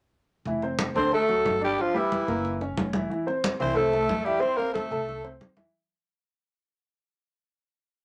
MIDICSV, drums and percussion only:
0, 0, Header, 1, 2, 480
1, 0, Start_track
1, 0, Key_signature, -1, "major"
1, 0, Tempo, 329489
1, 676, Time_signature, 4, 2, 24, 8
1, 11720, End_track
2, 0, Start_track
2, 0, Title_t, "Drums"
2, 662, Note_on_c, 9, 63, 32
2, 808, Note_off_c, 9, 63, 0
2, 908, Note_on_c, 9, 63, 33
2, 1054, Note_off_c, 9, 63, 0
2, 1146, Note_on_c, 9, 63, 80
2, 1292, Note_off_c, 9, 63, 0
2, 1395, Note_on_c, 9, 63, 33
2, 1540, Note_off_c, 9, 63, 0
2, 1631, Note_on_c, 9, 63, 34
2, 1777, Note_off_c, 9, 63, 0
2, 1877, Note_on_c, 9, 63, 33
2, 2023, Note_off_c, 9, 63, 0
2, 2121, Note_on_c, 9, 63, 75
2, 2266, Note_off_c, 9, 63, 0
2, 2363, Note_on_c, 9, 63, 30
2, 2508, Note_off_c, 9, 63, 0
2, 2603, Note_on_c, 9, 63, 32
2, 2749, Note_off_c, 9, 63, 0
2, 2851, Note_on_c, 9, 63, 33
2, 2996, Note_off_c, 9, 63, 0
2, 3087, Note_on_c, 9, 63, 51
2, 3233, Note_off_c, 9, 63, 0
2, 3324, Note_on_c, 9, 63, 35
2, 3470, Note_off_c, 9, 63, 0
2, 3567, Note_on_c, 9, 63, 34
2, 3712, Note_off_c, 9, 63, 0
2, 3804, Note_on_c, 9, 63, 34
2, 3950, Note_off_c, 9, 63, 0
2, 4042, Note_on_c, 9, 63, 76
2, 4188, Note_off_c, 9, 63, 0
2, 4273, Note_on_c, 9, 63, 73
2, 4419, Note_off_c, 9, 63, 0
2, 4537, Note_on_c, 9, 63, 31
2, 4683, Note_off_c, 9, 63, 0
2, 4779, Note_on_c, 9, 63, 33
2, 4925, Note_off_c, 9, 63, 0
2, 5012, Note_on_c, 9, 63, 85
2, 5158, Note_off_c, 9, 63, 0
2, 5247, Note_on_c, 9, 63, 31
2, 5393, Note_off_c, 9, 63, 0
2, 5482, Note_on_c, 9, 63, 34
2, 5627, Note_off_c, 9, 63, 0
2, 5730, Note_on_c, 9, 63, 33
2, 5875, Note_off_c, 9, 63, 0
2, 5962, Note_on_c, 9, 63, 74
2, 6108, Note_off_c, 9, 63, 0
2, 6207, Note_on_c, 9, 63, 30
2, 6353, Note_off_c, 9, 63, 0
2, 6448, Note_on_c, 9, 63, 32
2, 6594, Note_off_c, 9, 63, 0
2, 6693, Note_on_c, 9, 63, 34
2, 6838, Note_off_c, 9, 63, 0
2, 6927, Note_on_c, 9, 63, 54
2, 7073, Note_off_c, 9, 63, 0
2, 7167, Note_on_c, 9, 63, 35
2, 7312, Note_off_c, 9, 63, 0
2, 7412, Note_on_c, 9, 63, 34
2, 7558, Note_off_c, 9, 63, 0
2, 7642, Note_on_c, 9, 63, 33
2, 7787, Note_off_c, 9, 63, 0
2, 7882, Note_on_c, 9, 63, 73
2, 8027, Note_off_c, 9, 63, 0
2, 8111, Note_on_c, 9, 63, 73
2, 8257, Note_off_c, 9, 63, 0
2, 11720, End_track
0, 0, End_of_file